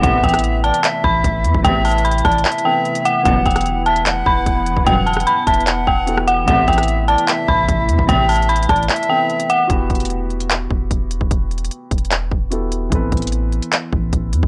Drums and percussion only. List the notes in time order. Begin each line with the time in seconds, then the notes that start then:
0.03 kick, closed hi-hat
0.24 kick, closed hi-hat
0.29 closed hi-hat
0.34 cross-stick, closed hi-hat
0.39 closed hi-hat
0.44 closed hi-hat
0.64 closed hi-hat
0.74 closed hi-hat
0.84 clap, closed hi-hat
1.04 kick
1.24 kick, closed hi-hat
1.44 closed hi-hat
1.54 kick
1.64 kick, closed hi-hat
1.85 closed hi-hat, open hi-hat
1.91 closed hi-hat
1.98 closed hi-hat
2.05 closed hi-hat
2.11 closed hi-hat
2.18 closed hi-hat
2.25 kick, cross-stick, closed hi-hat
2.32 closed hi-hat
2.38 closed hi-hat
2.45 clap, closed hi-hat
2.52 closed hi-hat
2.58 closed hi-hat
2.85 closed hi-hat
2.95 closed hi-hat
3.05 closed hi-hat
3.25 kick, closed hi-hat
3.46 kick, closed hi-hat
3.51 closed hi-hat
3.56 cross-stick, closed hi-hat
3.61 closed hi-hat
3.66 closed hi-hat
3.86 closed hi-hat
3.96 closed hi-hat
4.06 clap, closed hi-hat
4.26 kick
4.46 kick, closed hi-hat
4.66 closed hi-hat
4.77 kick
4.87 kick, closed hi-hat
5.07 closed hi-hat
5.13 cross-stick, closed hi-hat
5.20 closed hi-hat
5.27 closed hi-hat
5.47 kick, closed hi-hat
5.54 closed hi-hat
5.60 closed hi-hat
5.67 clap, closed hi-hat
5.87 kick
6.07 closed hi-hat
6.17 cross-stick
6.28 closed hi-hat
6.48 kick, closed hi-hat
6.68 kick, closed hi-hat
6.73 closed hi-hat
6.78 cross-stick, closed hi-hat
6.83 closed hi-hat
6.88 closed hi-hat
7.08 closed hi-hat
7.18 closed hi-hat
7.28 clap, closed hi-hat
7.48 kick
7.69 kick, closed hi-hat
7.89 closed hi-hat
7.99 kick
8.09 kick, closed hi-hat
8.29 closed hi-hat, open hi-hat
8.36 closed hi-hat
8.42 closed hi-hat
8.49 closed hi-hat
8.56 closed hi-hat
8.63 closed hi-hat
8.69 kick, cross-stick, closed hi-hat
8.76 closed hi-hat
8.83 closed hi-hat
8.89 clap, closed hi-hat
8.96 closed hi-hat
9.03 closed hi-hat
9.30 closed hi-hat
9.40 closed hi-hat
9.50 closed hi-hat
9.70 kick, closed hi-hat
9.90 kick, closed hi-hat
9.95 closed hi-hat
10.00 closed hi-hat
10.05 closed hi-hat
10.10 closed hi-hat
10.30 closed hi-hat
10.40 closed hi-hat
10.50 clap, closed hi-hat
10.71 kick
10.91 kick, closed hi-hat
11.11 closed hi-hat
11.21 kick
11.31 kick, closed hi-hat
11.51 closed hi-hat
11.58 closed hi-hat
11.65 closed hi-hat
11.71 closed hi-hat
11.91 kick, closed hi-hat
11.98 closed hi-hat
12.05 closed hi-hat
12.11 clap, closed hi-hat
12.32 kick
12.52 closed hi-hat
12.72 closed hi-hat
12.92 kick, closed hi-hat
13.12 kick, closed hi-hat
13.17 closed hi-hat
13.22 closed hi-hat
13.27 closed hi-hat
13.32 closed hi-hat
13.52 closed hi-hat
13.62 closed hi-hat
13.73 clap, closed hi-hat
13.93 kick
14.13 kick, closed hi-hat
14.33 closed hi-hat
14.43 kick